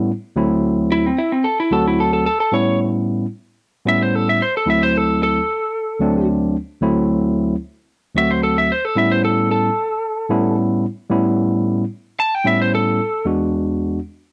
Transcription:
Already playing: A2 G3 B3 C#4 E4
0.36 D2 F#3 A3 C4 E4
0.92 E4
1.06 C4
1.18 E4
1.32 C4
1.44 A4
1.60 E4
1.71 D2 F#3 A3 C4 F#4 A4
1.88 E4
2.00 A4
2.13 A4
2.26 A4
2.40 A4
2.52 A2 G3 B3 C#4 E4 C#5
3.85 A2 G3 B3 C#4 E4 E5
4.02 C5
4.15 A4
4.29 E5
4.42 C5
4.57 A4
4.66 D2 F#3 A3 C4 E4 E5
4.83 C5
4.97 A4
5.23 A4
6.00 D2 F#3 A3 C4 D4
6.81 D2 F#3 A3 C4 E4
8.15 D2 F#3 A3 C4 F#4 E5
8.31 C5
8.43 A4
8.58 E5
8.72 C5
8.85 A4
8.95 A2 G3 B3 C#4 E4 E5
9.12 C5
9.25 A4
9.51 A4
10.30 A2 G3 B3 C#4 E4
11.10 A2 G3 B3 C#4 E4
12.20 A5
12.35 G5
12.44 A2 G3 B3 C#4 E4 E5
12.62 C5
12.75 A4
13.25 E2 G#3 B3 D4 F#4

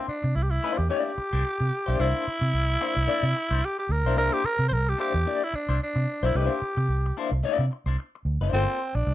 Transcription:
0.08 D4, muted fingered electric bass stroke
0.23 C3, muted clean electric guitar stroke
0.36 C2 E4
0.43 G4
0.51 E4, muted clean electric guitar stroke
0.63 A#3 D4 E4 C5
0.77 E2 G4, muted clean electric guitar stroke
0.89 A#3 D4 E4 G4 D5
1.17 muted clean electric guitar stroke, muted fingered electric bass stroke
1.33 C2 A#3 D4 E4 C5
1.44 muted clean electric guitar stroke
1.60 C3, muted clean electric guitar stroke
1.86 B1 A#3 D4 E4 C5
1.99 C2 A#3 D4 E4 C5
2.28 muted fingered electric bass stroke
2.41 C3, muted clean electric guitar stroke
2.54 C2
2.69 muted clean electric guitar stroke
2.81 A#3 D4 E4 C5
2.95 C2, muted clean electric guitar stroke
3.07 A#3 D4 E4 D5, muted fingered electric bass stroke
3.23 C3
3.36 muted clean electric guitar stroke
3.51 C2 A#3 D4 E4 C5
3.65 G4
3.78 G4, muted clean electric guitar stroke
3.89 D2 A#4
4.04 B1 A#3 D4 E4 C5
4.16 C2 A#3 D4 E4 A#4 C5
4.33 G4
4.44 A#4, muted fingered electric bass stroke
4.59 C3, muted clean electric guitar stroke
4.68 C2 C5
4.73 A#4
4.87 G4, muted clean electric guitar stroke
4.98 A#3 D4 E4 G4 C5
5.14 E2
5.26 A#3 D4 E4 D5
5.44 E4
5.52 D4, muted clean electric guitar stroke, muted fingered electric bass stroke
5.69 C2 A#3 D4 E4 C5
5.83 D4
5.96 C3, muted clean electric guitar stroke
6.23 B1 A#3 D4 E4 C5
6.35 C2 A3 C#4 E4 G4 C5
6.46 A#3 D4
6.62 muted fingered electric bass stroke
6.77 C3, muted clean electric guitar stroke
6.89 C2
7.06 muted clean electric guitar stroke
7.17 A#3 D4 E4 C5
7.32 C2, muted clean electric guitar stroke
7.43 A#3 D4 E4 D5, muted fingered electric bass stroke
7.59 C3
7.71 muted clean electric guitar stroke
7.86 C2 A#3 D4 E4 C5
7.98 muted clean electric guitar stroke
8.15 muted clean electric guitar stroke
8.25 D2
8.41 F#1 A#3 D4 E4 C5
8.53 G1 A#3 C4 F4 A4 C5
8.95 A#1 D4, muted clean electric guitar stroke
9.07 C2

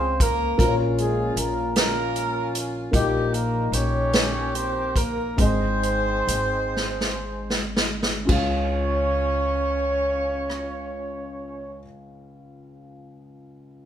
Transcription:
Already playing: C#2 C#3 G#3 C4 C#4 F4 G#4 C5 F5
0.20 A#3 A#4, kick, closed hi-hat
0.58 A#1 A#2 A#3 C#4 F4 A#4 C5, kick, closed hi-hat
0.68 C#5
0.98 G#3 G#4, closed hi-hat
1.36 A#1 A#3 A#4, closed hi-hat
1.76 A#3 C#4 F4 A#4, snare, closed hi-hat
2.16 closed hi-hat
2.55 closed hi-hat
2.91 A#1 A#2 G3 A#3 D#4 G4 D#5, kick, closed hi-hat
3.34 A#3 A#4, closed hi-hat
3.72 A#1 C#4 G4 A#4 C#5, closed hi-hat
4.13 snare, closed hi-hat
4.55 C4 C5, closed hi-hat
4.96 A#3 A#4, kick, closed hi-hat
5.37 G#1 G#2 C4 D#4 G#4 C5 D#5, kick, closed hi-hat
5.83 closed hi-hat
6.27 G#1, closed hi-hat
6.76 snare
7.01 snare
7.50 snare
7.77 snare
8.03 snare
8.25 C#2 C#4 F4, kick, crash
8.30 C#4 G#4 C#5 F5
10.50 cross-stick

